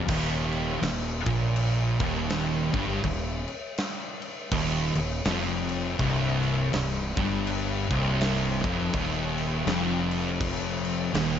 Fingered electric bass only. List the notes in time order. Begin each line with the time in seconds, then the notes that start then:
0.08 D#1
0.81 D#1
1.26 A#1
2.00 D#1
2.74 G1
3.04 D#1
4.51 D#1
4.95 D#1
5.25 F1
5.99 C1
6.73 C1
7.17 G1
7.90 C1
8.64 F1
8.93 D#1
9.67 F1
11.14 D#1